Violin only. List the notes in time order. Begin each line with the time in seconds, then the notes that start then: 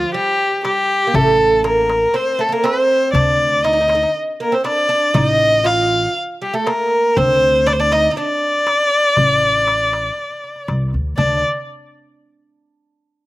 Already playing: F4
0.15 G4
0.66 G4
1.16 A4
1.66 A#4
2.16 C5
2.41 A4
2.53 A#4
2.65 C5
3.14 D5
3.65 D#5
4.42 A#4
4.55 C5
4.67 D5
5.16 D#5
5.66 F5
6.42 G4
6.55 A4
6.67 A#4
7.17 C5
7.67 D5
7.73 C5
7.80 D5
7.93 D#5
8.10 D#5
8.17 D5
11.18 D5